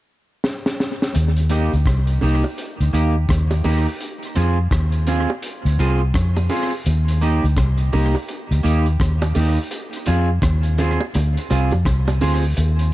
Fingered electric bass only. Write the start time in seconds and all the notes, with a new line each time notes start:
1.16 D#2
1.73 D2
1.86 C2
2.22 C2
2.80 D2
2.93 D#2
3.29 D#2
3.65 D#2
4.37 F2
4.71 D#2
5.65 D2
5.79 C2
6.15 F2
6.86 D#2
7.44 D2
7.57 C2
7.94 C2
8.51 D2
8.65 D#2
9.00 D#2
9.36 D#2
10.08 F2
10.43 D#2
11.15 D2
11.51 C2
11.73 F2
11.86 C2
12.22 D2
12.58 D#2